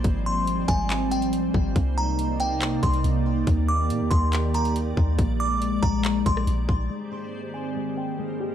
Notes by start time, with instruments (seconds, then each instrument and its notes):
Already playing: ambient pad F3, synth texture G3 C5
0.04 808-style bass G#1, ambient pad G3 C4, synth texture A#3, kick, closed hi-hat
0.26 synth bell C6
0.47 closed hi-hat
0.68 808-style bass G#1, synth bell G#5, kick, closed hi-hat
0.90 clap, closed hi-hat
1.11 synth bell G5, closed hi-hat
1.22 closed hi-hat
1.33 closed hi-hat
1.54 808-style bass G#1, kick
1.76 808-style bass C2, ambient pad C3 A#3 D#4 D5, synth texture D#4 D5, kick, closed hi-hat
1.98 synth bell A#5
2.19 closed hi-hat
2.40 synth bell G5, closed hi-hat
2.61 clap, closed hi-hat
2.83 808-style bass C2, synth bell C6, kick, closed hi-hat
2.94 closed hi-hat
3.04 808-style bass C2, closed hi-hat
3.47 808-style bass D#2, ambient pad D#3 G4, synth texture G3, kick, closed hi-hat
3.69 synth bell D6
3.90 808-style bass A#2, closed hi-hat
4.01 808-style bass D#2
4.11 808-style bass D#2, synth bell C6, kick, closed hi-hat
4.33 clap, closed hi-hat
4.54 synth bell A#5, closed hi-hat
4.65 closed hi-hat
4.76 closed hi-hat
4.97 808-style bass D#2, kick
5.18 808-style bass A#1, synth texture G#3 G4 C5, ambient pad G#3, kick, closed hi-hat
5.40 synth bell D6
5.62 closed hi-hat
5.83 808-style bass A#1, synth bell A#5, kick, closed hi-hat
6.04 clap, closed hi-hat
6.26 808-style bass A#1, synth bell C6, kick, closed hi-hat
6.37 cross-stick
6.47 808-style bass A#1, closed hi-hat
6.69 808-style bass A#1, kick
6.90 ambient pad G#2 D#3 A#3 C4, synth texture G3 G#3 A#4 C5, harp G#3
7.11 harp C4, synth bell C6
7.54 synth bell G#5
7.76 harp G#3
7.97 synth bell G5
8.19 harp G#3
8.40 harp G4